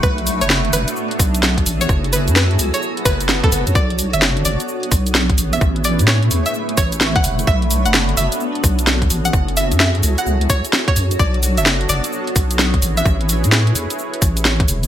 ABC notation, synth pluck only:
X:1
M:4/4
L:1/16
Q:"Swing 16ths" 1/4=129
K:Bdor
V:1 name="Synth pluck"
B z2 c z2 B z8 c | z2 B z B z2 c z2 B z2 A z2 | d z2 e z2 d z8 e | z2 d z c z2 e z2 c z2 f z2 |
e z2 f z2 e z8 f | z2 e z e z2 f z2 c z2 c z2 | d z2 e z2 d z8 e | z16 |]